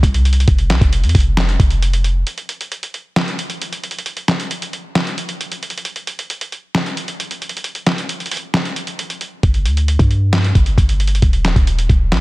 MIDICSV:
0, 0, Header, 1, 3, 480
1, 0, Start_track
1, 0, Tempo, 447761
1, 511, Time_signature, 4, 2, 24, 8
1, 13084, End_track
2, 0, Start_track
2, 0, Title_t, "808-style bass"
2, 0, Program_c, 0, 38
2, 32, Note_on_c, 0, 36, 110
2, 493, Note_off_c, 0, 36, 0
2, 511, Note_on_c, 0, 29, 112
2, 751, Note_on_c, 0, 36, 102
2, 767, Note_off_c, 0, 29, 0
2, 865, Note_off_c, 0, 36, 0
2, 871, Note_on_c, 0, 29, 109
2, 1111, Note_on_c, 0, 41, 106
2, 1127, Note_off_c, 0, 29, 0
2, 1225, Note_off_c, 0, 41, 0
2, 1231, Note_on_c, 0, 29, 109
2, 1692, Note_off_c, 0, 29, 0
2, 1711, Note_on_c, 0, 29, 104
2, 2402, Note_off_c, 0, 29, 0
2, 10112, Note_on_c, 0, 31, 107
2, 10351, Note_on_c, 0, 38, 100
2, 10368, Note_off_c, 0, 31, 0
2, 10694, Note_off_c, 0, 38, 0
2, 10712, Note_on_c, 0, 43, 105
2, 11288, Note_off_c, 0, 43, 0
2, 11311, Note_on_c, 0, 31, 104
2, 11542, Note_off_c, 0, 31, 0
2, 11552, Note_on_c, 0, 31, 106
2, 12013, Note_off_c, 0, 31, 0
2, 12031, Note_on_c, 0, 27, 111
2, 12377, Note_off_c, 0, 27, 0
2, 12392, Note_on_c, 0, 27, 102
2, 12737, Note_off_c, 0, 27, 0
2, 12751, Note_on_c, 0, 27, 106
2, 12990, Note_on_c, 0, 34, 103
2, 13006, Note_off_c, 0, 27, 0
2, 13084, Note_off_c, 0, 34, 0
2, 13084, End_track
3, 0, Start_track
3, 0, Title_t, "Drums"
3, 32, Note_on_c, 9, 36, 96
3, 37, Note_on_c, 9, 42, 85
3, 139, Note_off_c, 9, 36, 0
3, 144, Note_off_c, 9, 42, 0
3, 154, Note_on_c, 9, 42, 67
3, 261, Note_off_c, 9, 42, 0
3, 271, Note_on_c, 9, 42, 57
3, 351, Note_off_c, 9, 42, 0
3, 351, Note_on_c, 9, 42, 57
3, 431, Note_off_c, 9, 42, 0
3, 431, Note_on_c, 9, 42, 60
3, 510, Note_off_c, 9, 42, 0
3, 510, Note_on_c, 9, 42, 82
3, 511, Note_on_c, 9, 36, 118
3, 617, Note_off_c, 9, 42, 0
3, 618, Note_off_c, 9, 36, 0
3, 627, Note_on_c, 9, 42, 53
3, 734, Note_off_c, 9, 42, 0
3, 750, Note_on_c, 9, 42, 90
3, 751, Note_on_c, 9, 38, 96
3, 760, Note_on_c, 9, 39, 81
3, 857, Note_off_c, 9, 42, 0
3, 858, Note_off_c, 9, 38, 0
3, 867, Note_off_c, 9, 39, 0
3, 871, Note_on_c, 9, 36, 93
3, 874, Note_on_c, 9, 42, 63
3, 979, Note_off_c, 9, 36, 0
3, 981, Note_off_c, 9, 42, 0
3, 993, Note_on_c, 9, 42, 83
3, 1100, Note_off_c, 9, 42, 0
3, 1110, Note_on_c, 9, 42, 43
3, 1171, Note_off_c, 9, 42, 0
3, 1171, Note_on_c, 9, 42, 53
3, 1231, Note_off_c, 9, 42, 0
3, 1231, Note_on_c, 9, 36, 97
3, 1231, Note_on_c, 9, 42, 64
3, 1232, Note_on_c, 9, 46, 65
3, 1291, Note_off_c, 9, 42, 0
3, 1291, Note_on_c, 9, 42, 74
3, 1338, Note_off_c, 9, 36, 0
3, 1340, Note_off_c, 9, 46, 0
3, 1398, Note_off_c, 9, 42, 0
3, 1470, Note_on_c, 9, 38, 121
3, 1473, Note_on_c, 9, 42, 77
3, 1479, Note_on_c, 9, 39, 100
3, 1578, Note_off_c, 9, 38, 0
3, 1580, Note_off_c, 9, 42, 0
3, 1586, Note_off_c, 9, 39, 0
3, 1595, Note_on_c, 9, 42, 52
3, 1702, Note_off_c, 9, 42, 0
3, 1711, Note_on_c, 9, 36, 91
3, 1712, Note_on_c, 9, 42, 77
3, 1818, Note_off_c, 9, 36, 0
3, 1819, Note_off_c, 9, 42, 0
3, 1828, Note_on_c, 9, 42, 55
3, 1935, Note_off_c, 9, 42, 0
3, 1956, Note_on_c, 9, 42, 82
3, 2063, Note_off_c, 9, 42, 0
3, 2073, Note_on_c, 9, 42, 68
3, 2181, Note_off_c, 9, 42, 0
3, 2191, Note_on_c, 9, 42, 67
3, 2298, Note_off_c, 9, 42, 0
3, 2430, Note_on_c, 9, 42, 78
3, 2538, Note_off_c, 9, 42, 0
3, 2547, Note_on_c, 9, 42, 53
3, 2654, Note_off_c, 9, 42, 0
3, 2669, Note_on_c, 9, 42, 86
3, 2776, Note_off_c, 9, 42, 0
3, 2795, Note_on_c, 9, 42, 62
3, 2902, Note_off_c, 9, 42, 0
3, 2913, Note_on_c, 9, 42, 85
3, 3020, Note_off_c, 9, 42, 0
3, 3033, Note_on_c, 9, 42, 67
3, 3141, Note_off_c, 9, 42, 0
3, 3152, Note_on_c, 9, 42, 46
3, 3259, Note_off_c, 9, 42, 0
3, 3390, Note_on_c, 9, 38, 114
3, 3393, Note_on_c, 9, 42, 77
3, 3399, Note_on_c, 9, 39, 95
3, 3498, Note_off_c, 9, 38, 0
3, 3500, Note_off_c, 9, 42, 0
3, 3506, Note_off_c, 9, 39, 0
3, 3515, Note_on_c, 9, 42, 51
3, 3622, Note_off_c, 9, 42, 0
3, 3632, Note_on_c, 9, 42, 75
3, 3739, Note_off_c, 9, 42, 0
3, 3748, Note_on_c, 9, 42, 56
3, 3856, Note_off_c, 9, 42, 0
3, 3876, Note_on_c, 9, 42, 80
3, 3983, Note_off_c, 9, 42, 0
3, 3994, Note_on_c, 9, 42, 65
3, 4101, Note_off_c, 9, 42, 0
3, 4111, Note_on_c, 9, 42, 54
3, 4191, Note_off_c, 9, 42, 0
3, 4191, Note_on_c, 9, 42, 57
3, 4272, Note_off_c, 9, 42, 0
3, 4272, Note_on_c, 9, 42, 56
3, 4351, Note_off_c, 9, 42, 0
3, 4351, Note_on_c, 9, 42, 78
3, 4458, Note_off_c, 9, 42, 0
3, 4467, Note_on_c, 9, 42, 52
3, 4574, Note_off_c, 9, 42, 0
3, 4589, Note_on_c, 9, 42, 84
3, 4591, Note_on_c, 9, 38, 98
3, 4599, Note_on_c, 9, 39, 78
3, 4696, Note_off_c, 9, 42, 0
3, 4698, Note_off_c, 9, 38, 0
3, 4706, Note_off_c, 9, 39, 0
3, 4714, Note_on_c, 9, 42, 62
3, 4821, Note_off_c, 9, 42, 0
3, 4833, Note_on_c, 9, 42, 81
3, 4940, Note_off_c, 9, 42, 0
3, 4954, Note_on_c, 9, 42, 66
3, 5061, Note_off_c, 9, 42, 0
3, 5072, Note_on_c, 9, 42, 47
3, 5180, Note_off_c, 9, 42, 0
3, 5310, Note_on_c, 9, 38, 116
3, 5313, Note_on_c, 9, 42, 79
3, 5319, Note_on_c, 9, 39, 95
3, 5417, Note_off_c, 9, 38, 0
3, 5420, Note_off_c, 9, 42, 0
3, 5426, Note_off_c, 9, 39, 0
3, 5435, Note_on_c, 9, 42, 51
3, 5542, Note_off_c, 9, 42, 0
3, 5551, Note_on_c, 9, 42, 76
3, 5659, Note_off_c, 9, 42, 0
3, 5668, Note_on_c, 9, 42, 55
3, 5775, Note_off_c, 9, 42, 0
3, 5796, Note_on_c, 9, 42, 81
3, 5903, Note_off_c, 9, 42, 0
3, 5913, Note_on_c, 9, 42, 68
3, 6020, Note_off_c, 9, 42, 0
3, 6031, Note_on_c, 9, 42, 57
3, 6111, Note_off_c, 9, 42, 0
3, 6111, Note_on_c, 9, 42, 58
3, 6191, Note_off_c, 9, 42, 0
3, 6191, Note_on_c, 9, 42, 58
3, 6271, Note_off_c, 9, 42, 0
3, 6271, Note_on_c, 9, 42, 82
3, 6378, Note_off_c, 9, 42, 0
3, 6387, Note_on_c, 9, 42, 52
3, 6494, Note_off_c, 9, 42, 0
3, 6510, Note_on_c, 9, 42, 83
3, 6617, Note_off_c, 9, 42, 0
3, 6634, Note_on_c, 9, 42, 61
3, 6742, Note_off_c, 9, 42, 0
3, 6753, Note_on_c, 9, 42, 83
3, 6860, Note_off_c, 9, 42, 0
3, 6873, Note_on_c, 9, 42, 71
3, 6981, Note_off_c, 9, 42, 0
3, 6993, Note_on_c, 9, 42, 48
3, 7100, Note_off_c, 9, 42, 0
3, 7232, Note_on_c, 9, 38, 115
3, 7235, Note_on_c, 9, 42, 76
3, 7241, Note_on_c, 9, 39, 98
3, 7339, Note_off_c, 9, 38, 0
3, 7342, Note_off_c, 9, 42, 0
3, 7348, Note_off_c, 9, 39, 0
3, 7356, Note_on_c, 9, 42, 49
3, 7463, Note_off_c, 9, 42, 0
3, 7473, Note_on_c, 9, 42, 78
3, 7581, Note_off_c, 9, 42, 0
3, 7590, Note_on_c, 9, 42, 55
3, 7697, Note_off_c, 9, 42, 0
3, 7717, Note_on_c, 9, 42, 81
3, 7824, Note_off_c, 9, 42, 0
3, 7835, Note_on_c, 9, 42, 67
3, 7942, Note_off_c, 9, 42, 0
3, 7952, Note_on_c, 9, 42, 55
3, 8033, Note_off_c, 9, 42, 0
3, 8033, Note_on_c, 9, 42, 56
3, 8112, Note_off_c, 9, 42, 0
3, 8112, Note_on_c, 9, 42, 57
3, 8192, Note_off_c, 9, 42, 0
3, 8192, Note_on_c, 9, 42, 78
3, 8299, Note_off_c, 9, 42, 0
3, 8308, Note_on_c, 9, 42, 53
3, 8415, Note_off_c, 9, 42, 0
3, 8431, Note_on_c, 9, 42, 86
3, 8432, Note_on_c, 9, 38, 96
3, 8441, Note_on_c, 9, 39, 77
3, 8538, Note_off_c, 9, 42, 0
3, 8540, Note_off_c, 9, 38, 0
3, 8548, Note_off_c, 9, 39, 0
3, 8556, Note_on_c, 9, 42, 61
3, 8663, Note_off_c, 9, 42, 0
3, 8675, Note_on_c, 9, 42, 80
3, 8782, Note_off_c, 9, 42, 0
3, 8792, Note_on_c, 9, 42, 43
3, 8852, Note_off_c, 9, 42, 0
3, 8852, Note_on_c, 9, 42, 51
3, 8913, Note_off_c, 9, 42, 0
3, 8913, Note_on_c, 9, 42, 62
3, 8914, Note_on_c, 9, 46, 62
3, 8973, Note_off_c, 9, 42, 0
3, 8973, Note_on_c, 9, 42, 73
3, 9021, Note_off_c, 9, 46, 0
3, 9080, Note_off_c, 9, 42, 0
3, 9153, Note_on_c, 9, 38, 118
3, 9156, Note_on_c, 9, 42, 74
3, 9162, Note_on_c, 9, 39, 97
3, 9260, Note_off_c, 9, 38, 0
3, 9263, Note_off_c, 9, 42, 0
3, 9269, Note_off_c, 9, 39, 0
3, 9277, Note_on_c, 9, 42, 51
3, 9384, Note_off_c, 9, 42, 0
3, 9394, Note_on_c, 9, 42, 78
3, 9501, Note_off_c, 9, 42, 0
3, 9510, Note_on_c, 9, 42, 57
3, 9617, Note_off_c, 9, 42, 0
3, 9637, Note_on_c, 9, 42, 80
3, 9744, Note_off_c, 9, 42, 0
3, 9755, Note_on_c, 9, 42, 67
3, 9862, Note_off_c, 9, 42, 0
3, 9872, Note_on_c, 9, 42, 67
3, 9980, Note_off_c, 9, 42, 0
3, 10112, Note_on_c, 9, 36, 114
3, 10112, Note_on_c, 9, 42, 79
3, 10219, Note_off_c, 9, 36, 0
3, 10219, Note_off_c, 9, 42, 0
3, 10228, Note_on_c, 9, 42, 52
3, 10335, Note_off_c, 9, 42, 0
3, 10350, Note_on_c, 9, 42, 82
3, 10457, Note_off_c, 9, 42, 0
3, 10475, Note_on_c, 9, 42, 63
3, 10582, Note_off_c, 9, 42, 0
3, 10594, Note_on_c, 9, 42, 82
3, 10701, Note_off_c, 9, 42, 0
3, 10712, Note_on_c, 9, 36, 95
3, 10714, Note_on_c, 9, 42, 66
3, 10819, Note_off_c, 9, 36, 0
3, 10822, Note_off_c, 9, 42, 0
3, 10833, Note_on_c, 9, 42, 46
3, 10940, Note_off_c, 9, 42, 0
3, 11072, Note_on_c, 9, 38, 116
3, 11074, Note_on_c, 9, 42, 76
3, 11080, Note_on_c, 9, 39, 95
3, 11179, Note_off_c, 9, 38, 0
3, 11181, Note_off_c, 9, 42, 0
3, 11187, Note_off_c, 9, 39, 0
3, 11196, Note_on_c, 9, 42, 50
3, 11303, Note_off_c, 9, 42, 0
3, 11312, Note_on_c, 9, 36, 94
3, 11313, Note_on_c, 9, 42, 75
3, 11419, Note_off_c, 9, 36, 0
3, 11420, Note_off_c, 9, 42, 0
3, 11429, Note_on_c, 9, 42, 56
3, 11536, Note_off_c, 9, 42, 0
3, 11552, Note_on_c, 9, 36, 96
3, 11556, Note_on_c, 9, 42, 83
3, 11659, Note_off_c, 9, 36, 0
3, 11663, Note_off_c, 9, 42, 0
3, 11674, Note_on_c, 9, 42, 67
3, 11782, Note_off_c, 9, 42, 0
3, 11791, Note_on_c, 9, 42, 55
3, 11872, Note_off_c, 9, 42, 0
3, 11872, Note_on_c, 9, 42, 58
3, 11952, Note_off_c, 9, 42, 0
3, 11952, Note_on_c, 9, 42, 56
3, 12031, Note_off_c, 9, 42, 0
3, 12031, Note_on_c, 9, 42, 80
3, 12032, Note_on_c, 9, 36, 112
3, 12138, Note_off_c, 9, 42, 0
3, 12139, Note_off_c, 9, 36, 0
3, 12147, Note_on_c, 9, 42, 52
3, 12254, Note_off_c, 9, 42, 0
3, 12270, Note_on_c, 9, 42, 83
3, 12271, Note_on_c, 9, 38, 94
3, 12280, Note_on_c, 9, 39, 76
3, 12377, Note_off_c, 9, 42, 0
3, 12379, Note_off_c, 9, 38, 0
3, 12387, Note_off_c, 9, 39, 0
3, 12392, Note_on_c, 9, 36, 95
3, 12395, Note_on_c, 9, 42, 60
3, 12499, Note_off_c, 9, 36, 0
3, 12502, Note_off_c, 9, 42, 0
3, 12513, Note_on_c, 9, 42, 85
3, 12620, Note_off_c, 9, 42, 0
3, 12634, Note_on_c, 9, 42, 66
3, 12742, Note_off_c, 9, 42, 0
3, 12751, Note_on_c, 9, 36, 96
3, 12753, Note_on_c, 9, 42, 46
3, 12858, Note_off_c, 9, 36, 0
3, 12860, Note_off_c, 9, 42, 0
3, 12992, Note_on_c, 9, 38, 116
3, 12994, Note_on_c, 9, 42, 75
3, 13000, Note_on_c, 9, 39, 96
3, 13084, Note_off_c, 9, 38, 0
3, 13084, Note_off_c, 9, 39, 0
3, 13084, Note_off_c, 9, 42, 0
3, 13084, End_track
0, 0, End_of_file